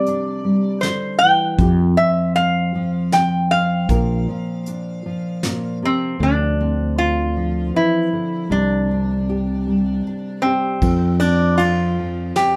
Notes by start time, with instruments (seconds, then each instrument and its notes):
Already playing: nylon-string guitar C3 G3 G4, resonator guitar played with a steel bar D5
0.06 nylon-string guitar D4, closed hi-hat
0.45 nylon-string guitar G3
0.81 nylon-string guitar D3, resonator guitar played with a steel bar C5, snare, closed hi-hat
1.19 resonator guitar played with a steel bar G5
1.23 nylon-string guitar E3
1.58 fretless electric bass F2, nylon-string guitar F2 G4, kick, closed hi-hat
1.97 nylon-string guitar F3, resonator guitar played with a steel bar E5
2.36 nylon-string guitar C4, resonator guitar played with a steel bar F5, closed hi-hat
2.75 nylon-string guitar F3
3.12 nylon-string guitar C4, resonator guitar played with a steel bar G5, snare, closed hi-hat
3.51 nylon-string guitar F4, resonator guitar played with a steel bar F5
3.89 fretless electric bass A#1, nylon-string guitar A#2 A#4, kick, closed hi-hat
4.28 nylon-string guitar F3
4.66 nylon-string guitar D4, closed hi-hat
5.06 nylon-string guitar F3
5.43 nylon-string guitar A#2, snare, closed hi-hat
5.82 nylon-string guitar C3, resonator guitar played with a steel bar C4
6.20 fretless electric bass D2, nylon-string guitar D3, resonator guitar played with a steel bar D4
6.61 nylon-string guitar C4
6.98 nylon-string guitar D4, resonator guitar played with a steel bar F4
7.37 nylon-string guitar F3
7.74 nylon-string guitar E3, resonator guitar played with a steel bar E4
8.13 nylon-string guitar D3
8.50 fretless electric bass C2, nylon-string guitar C3, resonator guitar played with a steel bar D4
8.91 nylon-string guitar D4
9.29 nylon-string guitar G4
9.67 nylon-string guitar G3
10.07 nylon-string guitar D4
10.42 resonator guitar played with a steel bar C4, nylon-string guitar G4
10.82 fretless electric bass F2, nylon-string guitar F2, kick, ride
11.20 nylon-string guitar C4, resonator guitar played with a steel bar D4, ride
11.58 nylon-string guitar C4, resonator guitar played with a steel bar F4, ride
11.99 nylon-string guitar F3
12.36 nylon-string guitar C4, resonator guitar played with a steel bar G4, snare, ride